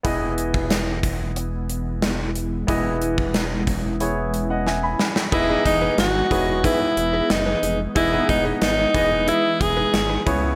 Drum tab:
CC |----------------|----------------|x---------------|----------------|
HH |x-x-x-x-x-x-x-x-|x-x-x-x-x-x-----|--x-x-x-x-x-x-x-|x-x-x-x-x-x-x-x-|
SD |----o-------o---|----o-------o-oo|----o-------o---|----o-------o---|
BD |o--o--o---------|o--o--o---------|o-o---o-o-------|o-o---o---o---o-|